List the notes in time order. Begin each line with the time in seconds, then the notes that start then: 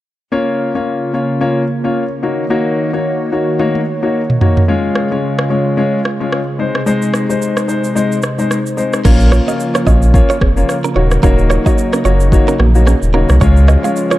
0.32 C#3 A#3 C#4 F4 C#5
0.75 A#3 C#4 F4 C#5
1.13 A#3 C#4 F4 C#5
1.41 A#3 C#4 F4 C#5
1.84 A#3 C#4 F4 C#5
2.23 D#3 A#3 D#4 F#4 C#5
2.50 A#3 D#4 F#4 C#5
2.93 A#3 D#4 F#4 C#5
3.32 A#3 D#4 F#4 C#5
3.59 A#3 D#4 F#4 C#5, high tom
3.75 high tom
4.02 A#3 D#4 F#4 C#5
4.30 mid tom
4.41 A#3 D#4 F#4 C#5, floor tom
4.57 floor tom
4.68 C#3 G#3 C#4 F4 C#5
4.95 cross-stick
5.11 G#3 C#4 F4 C#5
5.39 cross-stick
5.50 G#3 C#4 F4 C#5
5.77 G#3 C#4 F4 C#5
6.05 cross-stick
6.20 G#3 C#4 F4 C#5
6.32 cross-stick
6.59 C3 G#3 C4 D#4 C5
6.75 cross-stick
6.86 G#3 C4 D#4 C5, shaker
7.02 shaker
7.14 cross-stick, shaker
7.29 G#3 C4 D#4 C5, shaker
7.42 shaker
7.57 cross-stick, shaker
7.68 G#3 C4 D#4 C5, shaker
7.84 shaker
7.95 G#3 C4 D#4 C5, shaker
8.12 shaker
8.22 cross-stick, shaker
8.38 G#3 C4 D#4 C5, shaker
8.51 cross-stick, shaker
8.66 shaker
8.77 G#3 C4 D#4 C5, shaker
8.93 cross-stick, shaker
9.04 A#1 C#3 F3 A#3 C#4 F4 A#4 C#5, kick, crash, shaker
9.20 shaker
9.32 F4 C#5, cross-stick, shaker
9.48 A#3 C#4 F4 F#4 C#5 D#5, shaker
9.60 shaker
9.75 F4 C#5, cross-stick, shaker
9.86 A#1 A#3 C#4 F4 F#4 C#5 D#5, kick, shaker
10.02 shaker
10.14 A#3 C#4 F4 C#5, kick, shaker
10.30 F4 C#5, shaker
10.41 F1 C4 G#4, kick, cross-stick
10.57 A#3 C#4 F4 C#5, shaker
10.69 cross-stick, shaker
10.84 C#4 A#4, shaker
10.95 D#1 F#3 A#3 D#4 F#4 C#5
11.11 cross-stick, shaker
11.23 D#1 A#3 C#4 D#4 F#4 A#4 C#5, kick, shaker
11.38 shaker
11.50 F4 C#5, cross-stick, shaker
11.66 A#3 D#4 F#4 C#5 D#5, kick, shaker
11.78 shaker
11.93 C#4 A#4, cross-stick, shaker
12.05 F#1 A#3 D#4 F4 F#4 C#5, shaker
12.20 shaker
12.32 A#3 D#4 F#4 C#5, kick, shaker
12.48 C#4 A#4, shaker
12.59 A#1 A#3 F#4, cross-stick
12.75 A#3 D#4 F#4 C#5, shaker
12.87 C#4 G#4, cross-stick, shaker
13.02 D#1, shaker
13.14 A#3 C#4 D#4 F#4 A#4 C#5
13.29 C2, cross-stick, shaker
13.41 C#2 F3 G#3 C#4 F4 C#5, kick, shaker
13.57 shaker
13.68 F#4 D#5, cross-stick, shaker
13.84 G#3 C#4 F4 G#4 C#5 F5, shaker
13.96 shaker
14.11 F4 C#5, cross-stick, shaker